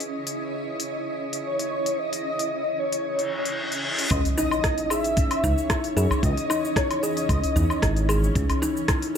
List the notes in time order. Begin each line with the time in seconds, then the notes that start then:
Already playing: C#4 E4 G#4 D#5
0.00 open hi-hat
0.27 open hi-hat
0.80 open hi-hat
1.33 open hi-hat
1.46 C#5
1.59 open hi-hat
1.86 open hi-hat
1.99 D#5
2.13 open hi-hat
2.39 open hi-hat
2.79 C#5
2.93 open hi-hat
3.05 reverse cymbal
3.19 open hi-hat
3.46 open hi-hat
3.72 open hi-hat
3.99 open hi-hat
4.10 C#2 E3 C#4 C#5 D#5, kick, open hi-hat, impact, low woodblock, shaker
4.25 open hi-hat, udu, shaker
4.38 D#4 D#5, shaker
4.51 low woodblock, shaker
4.64 E4, kick, cross-stick, open hi-hat, shaker
4.78 open hi-hat, shaker
4.90 G#4 E5, low woodblock, shaker
5.04 open hi-hat, shaker
5.17 C#4, kick, open hi-hat, shaker
5.31 open hi-hat, low woodblock, shaker
5.44 C#2 D#4, udu, shaker
5.58 shaker
5.70 E4, kick, cross-stick, open hi-hat, low woodblock, shaker
5.84 open hi-hat, shaker
5.96 F#2 G#4, shaker
6.10 udu, low woodblock, shaker
6.23 C#2 C#4 D#5, kick, open hi-hat, shaker
6.37 open hi-hat, shaker
6.50 D#4, low woodblock, shaker
6.65 shaker
6.76 E4 C#5, kick, cross-stick, open hi-hat, shaker
6.91 open hi-hat, low woodblock, shaker
7.03 G#4 D#5, shaker
7.17 open hi-hat, shaker
7.29 C#2 C#4, kick, open hi-hat, low woodblock, shaker
7.44 open hi-hat, udu, shaker
7.56 E2 D#4, udu, shaker
7.70 low woodblock, shaker
7.82 G#1 E4, kick, cross-stick, open hi-hat, shaker
7.97 open hi-hat, shaker
8.09 G#4, low woodblock, shaker
8.24 shaker
8.35 C#2 C#4 E6, kick, open hi-hat, shaker
8.50 open hi-hat, udu, low woodblock, shaker
8.62 D#4, shaker
8.77 shaker
8.88 E4, kick, cross-stick, open hi-hat, low woodblock, shaker
9.02 open hi-hat, shaker